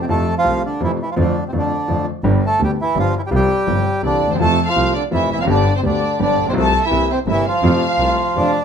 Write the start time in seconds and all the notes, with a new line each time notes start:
0.02 C3 C4
0.07 F2 C3 F3 A3 F4 A4
0.38 F3 F4
0.44 C2 C3 F3 A3 F4
0.66 D3 D4
0.80 F2 C3 E3 F3 A3 E4 F4
1.02 E3 E4
1.11 F3 F4
1.16 F2 D3 F3 A3 F4
1.21 D4
1.48 C3 C4
1.53 F2 D3 F3 A3 F4
1.57 D3 D4
1.88 F2 D3 F3 A3 F4
2.24 G1 G2 D3 G3 B3 G4
2.46 A3 A4
2.59 D2 D3 G3 B3 G4
2.63 G3 G4
2.81 E3 E4
2.95 G1 G2 D3 F3 G3 B3 G4
2.99 F4
3.18 E3 E4
3.27 G3 G4
3.31 C2 C3 F3 G3 F4
3.35 G3 G4
3.67 G1 G2 C3 F3 G3 F4
4.03 C2 C3 D3 E3 G3 D4 E4 D5
4.22 D#2
4.27 D2
4.31 D#2 C3 C4 C5
4.35 E2 A5
4.39 F2 C3 F3 A3 F4 A4
4.66 F3 F4 F5
4.76 C2 C3 F3 A3 F4
4.94 D3 D4 D5
5.11 F2 C3 E3 F3 A3 E4 F4 E5
5.31 F1 E3 E4 E5
5.35 E2 F2
5.40 F#2 F3 F4 F5
5.47 G1 G2 D3 G3 B3 D4 G4 D5
5.76 C3 C4 C5
5.83 D2 D3 G3 B3 D4 G4 D5
6.19 G1 G2 D3 G3 B3 D4 G4 D5
6.23 D3
6.38 A1 A#1
6.46 A#1 B1 C4 C5
6.50 C2 C3 F3 A3 F4
6.55 C2 A3 A4 A5
6.84 E3 E4 E5
6.91 C2 C3 G3 A#3 E4
7.11 C3 C4 C5
7.27 G1 G2 C3 G3 A#3 E4 E5
7.32 E3
7.46 F3 F4 F5
7.62 F2 C3 F3 A3 F4
7.98 C2 C3 F3 A3 F4
8.35 F2 C3 F3 A3 D4 F4 D5